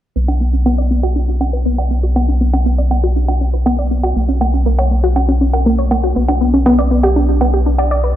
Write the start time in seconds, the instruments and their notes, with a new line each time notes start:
0.16 analog synth bass B1, synth arpeggio sound B3
0.28 synth arpeggio sound D4, low woodblock
0.41 synth arpeggio sound B3
0.53 synth arpeggio sound C#4
0.66 synth arpeggio sound B3, low woodblock
0.78 synth arpeggio sound D5
0.91 synth arpeggio sound B3
1.03 synth arpeggio sound F#4, low woodblock
1.16 synth arpeggio sound D4
1.28 synth arpeggio sound D4
1.41 synth arpeggio sound C#4, low woodblock
1.53 synth arpeggio sound B4
1.66 synth arpeggio sound B3
1.78 synth arpeggio sound D5, low woodblock
1.91 synth arpeggio sound B3
2.03 synth arpeggio sound F#4
2.16 synth arpeggio sound B3, low woodblock
2.28 synth arpeggio sound D4
2.41 synth arpeggio sound B3
2.53 synth arpeggio sound C#4, low woodblock
2.66 synth arpeggio sound B3
2.78 synth arpeggio sound D5
2.91 synth arpeggio sound B3, low woodblock
3.04 synth arpeggio sound F#4
3.16 synth arpeggio sound D4
3.28 synth arpeggio sound D4, low woodblock
3.41 synth arpeggio sound C#4
3.54 synth arpeggio sound B4
3.66 synth arpeggio sound B3, low woodblock
3.79 synth arpeggio sound D5
3.91 synth arpeggio sound B3
4.04 synth arpeggio sound F#4, low woodblock
4.16 analog synth bass B1, synth arpeggio sound A#3
4.29 synth arpeggio sound C#4
4.41 synth arpeggio sound A#3, low woodblock
4.54 synth arpeggio sound C#4
4.66 synth arpeggio sound A#3
4.79 synth arpeggio sound C#5, low woodblock
4.91 synth arpeggio sound A#3
5.04 synth arpeggio sound F#4
5.16 synth arpeggio sound C#4, low woodblock
5.28 synth arpeggio sound C#4
5.41 synth arpeggio sound C#4
5.54 synth arpeggio sound A#4, low woodblock
5.66 synth arpeggio sound A#3
5.78 synth arpeggio sound C#5
5.91 synth arpeggio sound A#3, low woodblock
6.04 synth arpeggio sound F#4
6.16 analog synth bass B1, synth arpeggio sound B3
6.28 synth arpeggio sound D4, low woodblock
6.41 synth arpeggio sound B3
6.54 synth arpeggio sound C#4
6.66 synth arpeggio sound B3, low woodblock
6.79 synth arpeggio sound D5
6.91 synth arpeggio sound B3
7.03 synth arpeggio sound G4, low woodblock
7.16 synth arpeggio sound D4
7.29 synth arpeggio sound D4
7.41 synth arpeggio sound B3, low woodblock
7.54 synth arpeggio sound G4
7.66 synth arpeggio sound D4
7.78 synth arpeggio sound D5, low woodblock
7.91 synth arpeggio sound D5
8.04 synth arpeggio sound B4